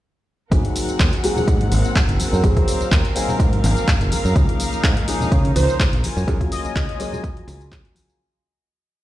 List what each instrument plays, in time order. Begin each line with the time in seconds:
0.51 fingered electric bass G#1, grand piano F#3 A#3 C4 D#4 G#4, string section C4 A#4 F#5, kick, closed hi-hat, tambourine
0.65 closed hi-hat
0.76 open hi-hat, tambourine, shaker
0.89 closed hi-hat, tambourine
1.00 fingered electric bass D#2, kick, clap, closed hi-hat, tambourine
1.13 closed hi-hat
1.23 grand piano F#3 A#3 C4 D#4 G#4, open hi-hat, tambourine
1.37 tambourine, high conga, low conga, shaker
1.48 fingered electric bass G#2, kick, closed hi-hat, tambourine
1.61 closed hi-hat, high conga, shaker
1.71 fingered electric bass G#1, open hi-hat, tambourine, high conga, shaker
1.84 closed hi-hat, tambourine, shaker
1.96 kick, clap, closed hi-hat, tambourine
2.09 fingered electric bass F#1, closed hi-hat
2.20 open hi-hat, tambourine, high conga, shaker
2.33 fingered electric bass F#2, tambourine
2.43 fingered electric bass G#1, grand piano F#3 A#3 C4 D#4 G#4, string section F5, kick, closed hi-hat, tambourine
2.57 kick, closed hi-hat
2.68 open hi-hat, tambourine
2.81 muted fingered electric bass stroke, closed hi-hat, tambourine
2.92 fingered electric bass D#2, kick, clap, closed hi-hat, tambourine
3.05 closed hi-hat
3.15 grand piano F#3 A#3 C4 D#4 G#4, open hi-hat, tambourine
3.28 tambourine, high conga, low conga, shaker
3.40 fingered electric bass G#2, kick, closed hi-hat, tambourine
3.53 closed hi-hat, high conga, shaker
3.64 fingered electric bass G#1, open hi-hat, tambourine, high conga, shaker
3.76 closed hi-hat, tambourine, shaker
3.88 kick, clap, closed hi-hat, tambourine
4.01 fingered electric bass F#1, closed hi-hat
4.11 muted fingered electric bass stroke, open hi-hat, tambourine, high conga, shaker
4.25 fingered electric bass F#2, tambourine
4.35 fingered electric bass C#2, grand piano F3 A#3 C#4 D#4 G#4, string section D#4, kick, closed hi-hat, tambourine
4.49 closed hi-hat
4.60 open hi-hat, tambourine, shaker
4.73 closed hi-hat, tambourine
4.84 fingered electric bass G#2, kick, clap, closed hi-hat, tambourine
4.97 closed hi-hat
5.07 grand piano F3 A#3 C#4 D#4 G#4, open hi-hat, tambourine
5.21 tambourine, high conga, low conga, shaker
5.32 fingered electric bass C#3, kick, closed hi-hat, tambourine
5.44 closed hi-hat, high conga, shaker
5.56 fingered electric bass C#2, analog polysynth C5, open hi-hat, tambourine, high conga, shaker
5.68 closed hi-hat, tambourine, shaker
5.80 kick, clap, closed hi-hat, tambourine
5.93 fingered electric bass A#1, closed hi-hat
6.04 string section F4 G#5, open hi-hat, tambourine, high conga, shaker
6.17 fingered electric bass F#2, tambourine
6.27 fingered electric bass F#2, grand piano F#3 A#3 C#4 F4 G#4, kick, closed hi-hat, tambourine
6.41 kick, closed hi-hat
6.52 analog polysynth D#5, open hi-hat, tambourine
6.65 analog polysynth D#5, muted fingered electric bass stroke, closed hi-hat, tambourine
6.76 fingered electric bass C#2, analog polysynth D#5, kick, clap, closed hi-hat, tambourine
6.89 closed hi-hat
6.99 grand piano F#3 A#3 C#4 F4 G#4, open hi-hat, tambourine
7.13 tambourine, high conga, low conga, shaker
7.24 kick, closed hi-hat, tambourine
7.37 closed hi-hat, high conga, shaker
7.47 fingered electric bass C#2, open hi-hat, tambourine, high conga, shaker
7.61 closed hi-hat, tambourine
7.72 kick, clap, closed hi-hat, tambourine
7.85 closed hi-hat, shaker
7.95 open hi-hat, tambourine, high conga, shaker
8.09 tambourine, shaker